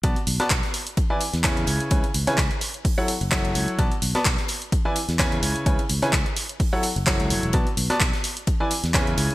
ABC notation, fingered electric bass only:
X:1
M:4/4
L:1/16
Q:"Swing 16ths" 1/4=128
K:Bdor
V:1 name="Fingered electric bass" clef=bass
B,,, z B,,, z B,,, z6 E,,3 C,, z | C,, z C,, z C,, z6 F,,,3 C,, z | B,,, z B,,, z B,,, z6 E,,3 C,, z | C,, z C,, z C,, z6 F,,,2 C,, F,,, E,,, |
B,,, z B,,, z B,,, z6 E,,3 C,, z |]